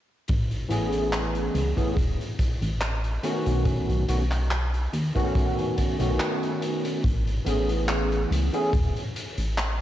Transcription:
0.28 A1, kick, closed hi-hat
0.51 closed hi-hat
0.69 A1 E3 A3 B3 C#4 G#4, closed hi-hat
0.92 closed hi-hat
1.12 clap, closed hi-hat
1.35 closed hi-hat
1.55 C#2, closed hi-hat
1.77 E3 A3 B3 C#4 G#4, kick, closed hi-hat
1.97 E1, kick, closed hi-hat
2.21 closed hi-hat
2.39 kick, closed hi-hat
2.62 A1, closed hi-hat
2.81 clap, closed hi-hat
3.04 closed hi-hat
3.23 D#3 A3 B3 C#4 F#4, closed hi-hat
3.46 B1, closed hi-hat
3.65 kick, closed hi-hat
3.89 B1, closed hi-hat
4.08 B1 D#3 A3 B3 C#4 F#4, closed hi-hat
4.31 clap, closed hi-hat
4.50 clap, closed hi-hat
4.74 closed hi-hat
4.93 D#2, closed hi-hat
5.15 D#3 A3 B3 C#4 F#4, kick, closed hi-hat
5.35 kick, closed hi-hat
5.59 closed hi-hat
5.78 kick, closed hi-hat
5.98 B1 D#3 A3 B3 C#4 F#4, closed hi-hat
6.20 clap, closed hi-hat
6.43 closed hi-hat
6.62 closed hi-hat
6.85 closed hi-hat
7.04 A1, kick, closed hi-hat
7.27 closed hi-hat
7.45 A1 E3 A3 B3 C#4 G#4, closed hi-hat
7.69 closed hi-hat
7.89 clap, closed hi-hat
8.12 closed hi-hat
8.31 C#2, closed hi-hat
8.53 E3 A3 B3 C#4 G#4, closed hi-hat
8.73 E1, kick, closed hi-hat
8.96 closed hi-hat
9.16 closed hi-hat
9.38 A1, closed hi-hat
9.58 clap, closed hi-hat

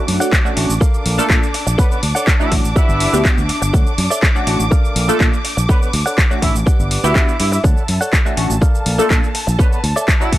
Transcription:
Already playing: A3 D4 F#4 D6
0.08 F#2, open hi-hat
0.20 A4 C#5 D5 F#5, shaker
0.32 kick, clap, shaker
0.44 A3 C#4 D4 F#4, shaker
0.56 A1 A3 C#4 D4 F#4, muted clean electric guitar stroke, open hi-hat
0.69 A1, shaker
0.81 A4 A#4 D5 F5, kick, shaker
0.94 shaker
1.06 A#1, open hi-hat
1.18 A3 A#3 D4 F4 A4, muted fingered electric bass stroke, shaker
1.29 A#2 A3 A#3 D4 F4 A4, kick, clap, shaker
1.43 shaker
1.54 muted clean electric guitar stroke, open hi-hat
1.67 A#1, muted clean electric guitar stroke, shaker
1.78 B3 A4 B4 C#5 D5 F#5, kick, shaker
1.91 B3 B4, shaker
2.03 D2, open hi-hat
2.15 A4 C#5 D5 F#5, shaker
2.27 kick, clap, shaker
2.40 A3 C#4 D4 E4 F#4 E5, shaker
2.51 A1 A3 C#4 D4 F#4, muted clean electric guitar stroke, kick, open hi-hat
2.64 A1, shaker
2.76 E4 G4 B4 D5 E5 F#5, kick, shaker
2.89 G1, shaker
3.00 open hi-hat
3.13 D2 B3 D4 F#4 G4, shaker
3.25 B3 D4 F#4 G4, kick, clap, shaker
3.38 D2, shaker
3.49 muted clean electric guitar stroke, muted fingered electric bass stroke, open hi-hat
3.62 G1, muted clean electric guitar stroke, shaker
3.74 D2 A4 C#5 D5 F#5, kick, shaker
3.87 shaker
3.98 F#2, open hi-hat
4.10 A4 C#5 D5 E5, shaker
4.23 kick, clap, shaker
4.35 A3 C#4 D4 F#4, shaker
4.47 A1 A3 C#4 D4 F#4, muted clean electric guitar stroke, open hi-hat
4.60 A1, shaker
4.71 A4 A#4 D5 F5, kick, shaker
4.85 shaker
4.96 A#1, open hi-hat
5.08 A3 A#3 D4 F4 A4, muted fingered electric bass stroke, shaker
5.20 A#2 A3 A#3 D4 F4 A4, kick, clap, shaker
5.34 shaker
5.45 muted clean electric guitar stroke, open hi-hat
5.57 A#1, muted clean electric guitar stroke, shaker
5.69 B3 A4 B4 C#5 D5 F#5, kick, shaker
5.82 B3 B4, shaker
5.93 D2, open hi-hat
6.06 A4 C#5 D5 F#5, shaker
6.18 kick, clap, shaker
6.30 A3 C#4 D4 F#4, shaker
6.42 A1 A3 C#4 D4 E4 F#4 E5, muted clean electric guitar stroke, kick, open hi-hat
6.55 A1, shaker
6.66 G4 B4 D5 F#5, kick, shaker
6.79 G1, shaker
6.91 open hi-hat
7.03 D2 B3 D4 E4 F#4 G4 E5, shaker
7.15 B3 D4 F#4 G4, kick, clap, shaker
7.29 shaker
7.40 G2 E4 E5, muted clean electric guitar stroke, open hi-hat
7.52 E4 E5, muted clean electric guitar stroke, shaker
7.64 D2 A4 C#5 D5 F#5 A5, kick, shaker
7.77 shaker
7.88 F#2, open hi-hat
8.01 A4 C#5 D5 F#5, shaker
8.13 kick, clap, shaker
8.25 A3 C#4 D4 F#4, shaker
8.37 A1 A3 C#4 D4 F#4, muted clean electric guitar stroke, open hi-hat
8.50 A1, shaker
8.61 A4 A#4 D5 F5, kick, shaker
8.75 shaker
8.86 A#1, open hi-hat
8.98 A3 A#3 D4 F4 A4, muted fingered electric bass stroke, shaker
9.10 A#2 A3 A#3 D4 F4 A4, kick, clap, shaker
9.24 shaker
9.35 muted clean electric guitar stroke, open hi-hat
9.47 A#1, muted clean electric guitar stroke, shaker
9.59 B3 A4 B4 C#5 D5 F#5, kick, shaker
9.72 B3 B4, shaker
9.84 D2, open hi-hat
9.96 A4 C#5 D5 E5, shaker
10.08 kick, clap, shaker
10.20 A3 C#4 D4 E4 F#4 E5, shaker
10.32 A1 A3 C#4 D4 F#4, muted clean electric guitar stroke, kick, open hi-hat

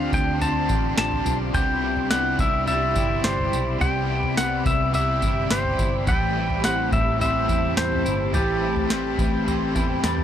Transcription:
Already playing: D3 F3 C4 D4 F4 G4 D5 F5 C6
0.13 D2 D4 G5, kick, floor tom, tambourine
0.39 D3 F3 C4 A5, floor tom, tambourine
0.44 C4 D4 G4
0.69 A1 D4, kick, tambourine
0.98 A1 G4 A5, snare, tambourine
1.11 floor tom
1.25 B1 D4, floor tom, tambourine
1.53 C2 C3 G3 B3 E4 G4 G5 B5 G6, kick, floor tom, tambourine
1.83 E4
1.97 floor tom
2.10 G3 B3 E4 F#5, snare, tambourine
2.15 G4
2.39 C2 E4 E5, kick, floor tom, tambourine
2.66 C3 G3 E5 A6, floor tom, tambourine
2.72 E4 G4
2.96 G1 E4, kick, tambourine
3.24 G1 G4 C5, snare, tambourine
3.38 floor tom
3.52 B1 E4, tambourine
3.79 C2 C3 G3 G5 D6, floor tom, tambourine
3.83 B3 E4 G4
4.09 E4
4.23 floor tom
4.37 B3 F#5, snare, tambourine
4.66 C2 E4 E5, kick, floor tom, tambourine
4.92 C3 G3 E5, floor tom, tambourine
4.98 E4 G4
5.22 G1 E4, kick, tambourine
5.51 G1 G4 C5, snare, tambourine
5.65 floor tom
5.79 G1 E4, kick, tambourine
6.05 A1 A2 E3 G3 C4 G5 A5 B6, kick, floor tom, tambourine
6.10 C4 E4 B4
6.36 E4
6.50 floor tom
6.64 C4 F#5, snare, tambourine
6.92 A1 E4 E5, kick, floor tom, tambourine
7.19 A2 E3 G3 C4 E5, floor tom, tambourine
7.23 C4 E4
7.49 E2 E4, kick, tambourine
7.77 E2 C5, snare, tambourine
7.92 floor tom
8.05 G1 E4, tambourine
8.32 A1 A2 E3 G3 C4 E4 G4 B4 G5 A6, floor tom, tambourine
8.62 E4
8.76 floor tom
8.88 G3 C4 E4 G6, snare, tambourine
8.93 B4
9.19 A1 E4, kick, floor tom, tambourine
9.44 A2 E3 G3 C4, floor tom, tambourine
9.49 C4 E4 B4
9.75 E2 E4, kick, tambourine
10.04 E2 B4 A6, snare, tambourine
10.18 floor tom

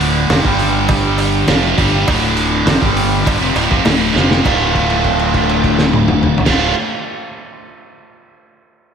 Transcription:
Already playing: D1 D2 A2 D3 A3 D4 F4 D5
0.01 open hi-hat
0.29 F1 F2 C3, snare, open hi-hat, cowbell
0.43 G1 G2 D3 G3 D4 G4 D5, kick
0.59 open hi-hat
0.89 kick, open hi-hat, cowbell
1.18 open hi-hat, cowbell
1.47 F1 F2 C3 F3 A3 D4 F4 D5, snare, open hi-hat, cowbell
1.77 G1 G2 D3 G3, kick, open hi-hat
2.07 D1 D2 A2 D3, kick, open hi-hat, cowbell
2.37 open hi-hat
2.66 F1 F2 C3, snare, open hi-hat, cowbell
2.81 G1 G2 D3 G3, kick
2.97 open hi-hat
3.24 G1 G2 D3, kick, open hi-hat, cowbell
3.40 F1 F2 C3
3.55 D1 D2 A2, open hi-hat, cowbell
3.70 F1 F2 C3, kick, snare
3.85 D1 D2 A2 D3 A3 D4 F4, snare, open hi-hat, cowbell
4.14 F1 F2 C3 F3, snare
4.31 snare
4.42 D1 D2 A2 D3 A3 A#3 D#4 F#4 D#5, kick, crash, cowbell
4.47 F4
4.65 A3 D4 F4 D5
4.75 kick, crash
4.90 crash
5.04 kick, crash
5.19 crash
5.34 kick, crash
5.49 crash
5.64 kick, crash
5.79 snare
5.93 high tom
6.08 mid tom
6.23 mid tom
6.38 floor tom
6.45 D1 D2 A2 D3 A3 D4 F4 D5, kick, snare, crash
6.49 F4

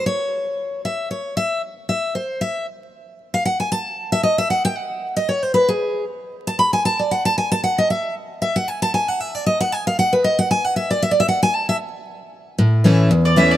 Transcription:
0.06 C#5
0.85 E5
1.11 C#5
1.37 E5
1.89 E5
2.15 C5
2.41 E5
3.34 F5
3.45 F#5
3.60 G#5
3.72 A5
4.12 E5
4.23 D#5
4.38 E5
4.50 F#5
4.65 G5
4.77 F#5
5.17 D#5
5.29 C#5
5.43 C5
5.54 B4
5.69 G#4
6.47 A5
6.59 B5
6.73 G#5
6.85 A5
6.99 D5
7.11 F#5
7.25 A5
7.38 G#5
7.52 A5
7.64 F#5
7.78 D#5
7.90 E5
8.42 E5
8.56 F#5
8.68 G#5
8.82 A5
8.94 G#5
9.08 F#5
9.20 E5
9.35 D5
9.46 D#5
9.60 F#5
9.72 G#5
9.87 F5
9.99 F#5
10.13 B4
10.24 D#5
10.39 F#5
10.51 G#5
10.65 F#5
10.76 E5
10.91 D5
11.02 E5
11.11 D5
11.20 E5
11.28 F#5
11.43 G#5
11.55 A5
11.69 E5
12.59 A2
12.84 E3 A3 C#4 E4
13.11 E2
13.25 D5
13.36 E3 A3 C#4 E4 E5
13.51 D5

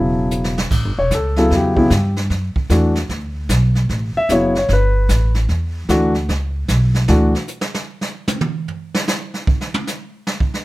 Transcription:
Already playing: E1 C#3 F#3 B3 E4 E5 A5
0.31 hi-hat pedal
0.44 snare
0.58 snare
0.71 A1, brush sweep, kick, snare, crash
0.85 G1
0.98 E1 C#5
1.11 C#2, kick, snare, hi-hat pedal
1.15 A4
1.36 C#3 F#3 B3 E4 A4, snare
1.51 E2, brush sweep, kick, snare
1.56 G4
1.76 C#3 F#3 B3 E4, kick
1.90 G2, kick, snare, hi-hat pedal
2.17 snare
2.30 F#2, brush sweep, kick, snare
2.56 muted upright bass stroke, kick
2.70 E2 E3 A3 D4 F#4, kick, snare, hi-hat pedal
2.95 snare
3.09 D2, brush sweep, kick, snare
3.49 B1, kick, snare, hi-hat pedal
3.75 snare
3.89 A1, brush sweep, kick, snare
4.15 E5, muted upright bass stroke
4.29 F#1 C#3 F#3 B3 E4 C#5, kick, snare, hi-hat pedal
4.55 C#5, snare
4.69 G1, brush sweep, kick, snare
4.73 B4
5.09 A1, kick, snare, hi-hat pedal
5.35 snare
5.49 E2, brush sweep, kick, snare
5.89 D2 E3 A3 D4 F#4, kick, snare, hi-hat pedal
6.14 snare
6.29 C#2, brush sweep, kick, snare
6.68 B1, kick, snare, hi-hat pedal
6.94 snare
7.08 D2 E3 A3 D4 F#4, snare
7.35 snare
7.48 hi-hat pedal
7.61 snare
7.74 snare
8.01 snare
8.28 hi-hat pedal, high tom
8.41 mid tom
8.68 floor tom
8.95 snare
9.08 snare, hi-hat pedal
9.34 snare
9.47 kick
9.61 snare
9.74 high tom
9.87 snare, hi-hat pedal
10.27 snare
10.40 kick
10.54 snare

